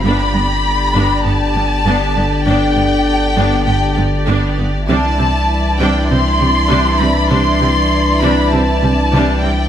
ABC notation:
X:1
M:4/4
L:1/8
Q:1/4=99
K:Gmix
V:1 name="Violin section"
b4 a4 | g4 g z3 | a3 g c'3 b | c'3 b a3 g |]
V:2 name="Violin section"
[Gd]8- | [Gd]8 | [Ed]8- | [Ed]8 |]
V:3 name="Viola section"
[B,D] B, z [B,D] B, [G,B,] [B,D] B, | [B,D] B, z [B,D] B, [G,B,] [B,D] B, | [G,D] [G,C] z [G,D] [G,C] G, [G,D] [G,C] | [G,D] [G,C] z [G,D] [G,C] G, [G,D] [G,C] |]
V:4 name="French horn section"
[D,D]8- | [D,D]8 | [E,D]8- | [E,D]8 |]
V:5 name="Cello section" clef=bass
G,, G,, z G,, G,, G,, G,, G,, | G,, G,, z G,, G,, G,, G,, G,, | C, C, z C, C, C, C, C, | C, C, z C, C, C, C, C, |]
V:6 name="Sub bass" clef=bass
G,,,8- | G,,,8 | C,,8- | C,,8 |]